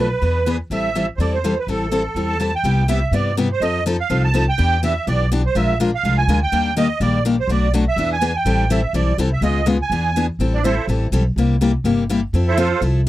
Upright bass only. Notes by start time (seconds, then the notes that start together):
Already playing: B1
0.22 E2
0.70 A1
1.18 E2
1.67 A1
2.15 E2
2.64 C2
3.11 G2
3.60 F2
4.10 C2
4.59 E2
5.07 B1
5.55 A#1
6.03 C2
6.27 D2
6.52 D#2
7.00 A#1
7.47 B1
7.96 E2
8.45 A1
8.93 B1
9.18 C2
9.41 C#2
9.90 E2
10.39 A1
10.87 A1
11.12 B1
11.36 C2
11.84 G1
12.33 F2
12.81 C2